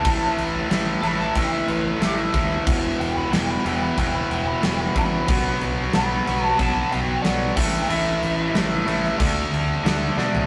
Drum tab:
CC |x-x-x-x-x-x-x-x-|x-x-x-x-x-x-x-x-|x-x-x-x-x-x-x-x-|x-x-x-x-x-x-x---|
SD |----o-oo----o---|----o-------o---|----o-------o---|----o--o----o-o-|
FT |----------------|----------------|----------------|---------------o|
BD |o-------o-----o-|o-------o-----o-|o-------o-----o-|--------o-------|